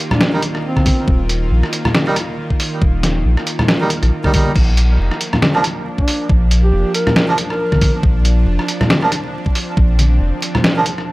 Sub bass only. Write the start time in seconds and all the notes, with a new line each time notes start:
1.08 D#1
1.51 A#1
2.82 D#1
3.25 A#1
4.03 A#1
4.55 A#1
4.99 F1
6.29 A#1
6.73 F1
8.03 A#1
8.47 F1
9.77 A#1
10.21 F1